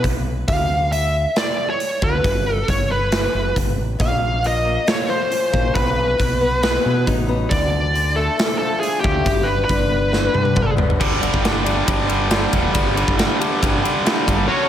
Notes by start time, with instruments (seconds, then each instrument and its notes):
0.04 fingered electric bass B1, kick, open hi-hat
0.48 fingered electric bass D2, lead electric guitar F5, kick, open hi-hat
0.92 lead electric guitar E5, open hi-hat
1.36 lead electric guitar D5, snare, open hi-hat
1.70 lead electric guitar C#5
1.80 open hi-hat
2.02 fingered electric bass D2, lead electric guitar B4, kick
2.24 fingered electric bass G1, kick, open hi-hat
2.54 lead electric guitar A4
2.68 fingered electric bass G1, lead electric guitar C#5, kick, open hi-hat
2.92 lead electric guitar B4
3.12 snare, open hi-hat
3.34 fingered electric bass F#1
3.56 fingered electric bass G1, kick, open hi-hat
3.78 fingered electric bass A1
3.99 fingered electric bass A#1, steel-string acoustic guitar A#2, lead electric guitar F5, kick, open hi-hat
4.43 steel-string acoustic guitar A#2, open hi-hat
4.47 lead electric guitar D#5
4.65 steel-string acoustic guitar A#3
4.86 steel-string acoustic guitar A#2, lead electric guitar C#5, snare, open hi-hat
5.08 steel-string acoustic guitar F3, lead electric guitar C5
5.30 steel-string acoustic guitar C#4, open hi-hat
5.52 fingered electric bass A#1, steel-string acoustic guitar A#3, kick
5.74 fingered electric bass B1, steel-string acoustic guitar B2, lead electric guitar B4, kick, open hi-hat
6.18 fingered electric bass B1, steel-string acoustic guitar B2, kick, open hi-hat
6.41 steel-string acoustic guitar B3
6.62 steel-string acoustic guitar B2, lead electric guitar B4, snare, open hi-hat
6.85 fingered electric bass B2, steel-string acoustic guitar F#3
7.07 fingered electric bass A1, steel-string acoustic guitar D#4, kick, open hi-hat
7.28 steel-string acoustic guitar B3
7.50 fingered electric bass D2, steel-string acoustic guitar D3, lead electric guitar D5, kick, open hi-hat
7.94 steel-string acoustic guitar D3, open hi-hat
8.16 steel-string acoustic guitar A3, lead electric guitar A4
8.38 steel-string acoustic guitar D3, snare, open hi-hat
8.58 steel-string acoustic guitar F3, lead electric guitar A4
8.80 steel-string acoustic guitar D4, lead electric guitar G#4, open hi-hat
9.00 steel-string acoustic guitar A3, lead electric guitar G4, kick
9.05 fingered electric bass D2
9.25 fingered electric bass G1, steel-string acoustic guitar G2, kick, open hi-hat
9.43 lead electric guitar B4
9.65 steel-string acoustic guitar D3, lead electric guitar B4
9.69 fingered electric bass G1, kick, open hi-hat
9.90 steel-string acoustic guitar B3
10.12 steel-string acoustic guitar D3, snare
10.34 fingered electric bass G2, steel-string acoustic guitar G3, high tom
10.45 high tom
10.55 fingered electric bass G1, steel-string acoustic guitar D4, kick, mid tom
10.77 steel-string acoustic guitar B3, floor tom
10.90 floor tom
11.00 fingered electric bass G1, distorted electric guitar G2 D3 G3, kick, crash
11.22 fingered electric bass G1, distorted electric guitar G2 D3 G3, ride
11.34 fingered electric bass G1, kick
11.43 distorted electric guitar G2 D3 G3, snare, ride
11.64 distorted electric guitar G2 D3 G3, ride
11.86 fingered electric bass G1, distorted electric guitar G2 D3 G3, kick, ride
12.09 distorted electric guitar G2 D3 G3, ride
12.30 distorted electric guitar G2 D3 G3, snare, ride
12.53 fingered electric bass E1, distorted electric guitar G2 D3 G3, kick, ride
12.73 fingered electric bass G1, distorted electric guitar G2 D3 G3, kick, ride
12.96 distorted electric guitar G2 D3 G3, ride
13.08 fingered electric bass G1, kick
13.17 distorted electric guitar G2 D3 G3, snare, ride
13.40 distorted electric guitar G2 D3 G3, ride
13.62 fingered electric bass G1, distorted electric guitar G2 D3 G3, kick, ride
13.83 distorted electric guitar G2 D3 G3, ride
14.05 distorted electric guitar G2 D3 G3, snare, ride
14.27 fingered electric bass G1, distorted electric guitar G2 D3 G3, kick, ride
14.48 distorted electric guitar F#3 A3 C#4 F#4, string section A4 F#5 C#6, lead electric guitar C#5